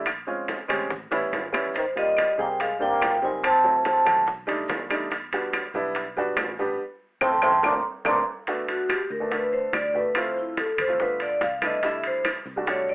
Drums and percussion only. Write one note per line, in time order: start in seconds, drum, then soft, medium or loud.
0.06 high bongo medium
0.06 high conga soft
0.06 high timbale medium
0.06 claves medium
0.06 maracas medium
0.27 high bongo soft
0.27 high conga soft
0.27 maracas soft
0.48 high bongo medium
0.48 high conga medium
0.48 high timbale medium
0.48 low timbale medium
0.48 maracas medium
0.69 high conga soft
0.69 low conga medium
0.69 high timbale medium
0.69 claves medium
0.69 maracas soft
0.90 high bongo medium
0.90 high conga soft
0.90 low conga medium
0.90 maracas medium
1.11 high bongo medium
1.11 high conga soft
1.11 high timbale medium
1.11 maracas soft
1.32 high conga medium
1.32 high timbale medium
1.32 low timbale medium
1.32 maracas medium
1.54 low bongo loud
1.54 high conga soft
1.54 high timbale medium
1.54 claves medium
1.54 maracas soft
1.74 high bongo medium
1.74 high conga soft
1.74 high timbale medium
1.74 maracas medium
1.96 high bongo soft
1.96 high conga soft
1.96 high timbale medium
1.96 maracas soft
2.17 high bongo medium
2.17 high conga medium
2.17 high timbale medium
2.17 low timbale medium
2.17 claves medium
2.17 maracas medium
2.39 high bongo soft
2.39 high conga soft
2.39 maracas soft
2.60 high bongo medium
2.60 high conga soft
2.60 high timbale medium
2.60 maracas medium
2.81 high conga soft
2.81 maracas soft
3.02 high bongo medium
3.02 low bongo medium
3.02 high conga medium
3.02 high timbale medium
3.02 low timbale medium
3.02 claves medium
3.02 maracas medium
3.22 high bongo soft
3.22 maracas soft
3.43 high bongo medium
3.43 high conga soft
3.43 high timbale medium
3.43 claves medium
3.43 maracas medium
3.64 high bongo soft
3.64 high conga soft
3.64 maracas soft
3.85 high bongo medium
3.85 high conga medium
3.85 high timbale medium
3.85 low timbale medium
3.85 maracas medium
4.06 high conga soft
4.06 low conga medium
4.06 high timbale medium
4.06 claves medium
4.06 maracas soft
4.26 high bongo medium
4.26 high conga soft
4.26 maracas medium
4.48 high bongo soft
4.48 high timbale medium
4.48 maracas soft
4.68 high bongo medium
4.68 low bongo medium
4.68 high conga medium
4.68 high timbale medium
4.68 low timbale medium
4.68 maracas medium
4.89 high bongo soft
4.89 high conga soft
4.89 high timbale medium
4.89 claves medium
4.89 maracas soft
5.10 high bongo medium
5.10 high conga soft
5.10 high timbale medium
5.10 maracas medium
5.32 high bongo soft
5.32 high conga soft
5.32 high timbale medium
5.32 maracas soft
5.52 high bongo medium
5.52 high conga medium
5.52 high timbale medium
5.52 low timbale medium
5.52 claves medium
5.52 maracas medium
5.74 high bongo soft
5.74 high conga soft
5.74 maracas soft
5.95 high bongo medium
5.95 high conga soft
5.95 high timbale medium
5.95 maracas medium
6.17 high conga soft
6.17 maracas soft
6.37 high bongo medium
6.37 low bongo medium
6.37 high conga medium
6.37 high timbale medium
6.37 low timbale medium
6.37 claves medium
6.37 maracas medium
6.58 high bongo soft
6.58 maracas soft
7.21 low bongo loud
7.21 high conga medium
7.21 high timbale medium
7.21 claves loud
7.21 maracas medium
7.42 low bongo medium
7.42 high conga loud
7.42 high timbale loud
7.42 claves medium
7.42 maracas medium
7.63 low bongo loud
7.63 high conga medium
7.63 high timbale medium
7.63 claves medium
7.63 maracas loud
8.05 low bongo medium
8.05 high conga medium
8.05 high timbale loud
8.05 claves medium
8.05 maracas medium
8.47 high bongo medium
8.47 high conga soft
8.47 high timbale medium
8.47 maracas medium
8.68 high bongo soft
8.68 high conga soft
8.68 high timbale medium
8.68 maracas soft
8.89 high bongo medium
8.89 high conga medium
8.89 high timbale medium
8.89 claves medium
8.89 maracas medium
9.10 high bongo soft
9.10 high conga soft
9.10 maracas soft
9.31 high bongo medium
9.31 high conga soft
9.31 high timbale medium
9.31 maracas medium
9.53 high bongo soft
9.53 high conga soft
9.53 maracas soft
9.73 high bongo medium
9.73 low bongo medium
9.73 high conga medium
9.73 high timbale medium
9.73 claves medium
9.73 maracas medium
9.95 maracas soft
10.15 high bongo medium
10.15 high conga soft
10.15 high timbale medium
10.15 claves medium
10.15 maracas medium
10.36 high bongo soft
10.36 high conga soft
10.36 maracas soft
10.57 high bongo medium
10.57 high conga medium
10.57 high timbale medium
10.57 maracas medium
10.78 high bongo soft
10.78 low conga medium
10.78 high timbale medium
10.78 claves medium
10.78 maracas soft
10.99 high bongo medium
10.99 high conga soft
10.99 maracas medium
11.20 high bongo soft
11.20 high conga soft
11.20 high timbale medium
11.20 maracas soft
11.41 high bongo medium
11.41 low bongo medium
11.41 high conga medium
11.41 high timbale medium
11.41 maracas medium
11.62 high conga medium
11.62 high timbale medium
11.62 claves medium
11.62 maracas soft
11.83 high bongo medium
11.83 high conga soft
11.83 high timbale medium
11.83 maracas medium
12.04 high bongo soft
12.04 high conga soft
12.04 high timbale medium
12.04 maracas soft
12.25 high bongo medium
12.25 high conga medium
12.25 high timbale medium
12.25 claves medium
12.25 maracas medium
12.46 high bongo soft
12.46 high conga soft
12.46 maracas soft
12.67 high bongo medium
12.67 high conga soft
12.67 high timbale medium
12.67 maracas medium
12.88 high bongo soft
12.88 high conga soft
12.88 maracas soft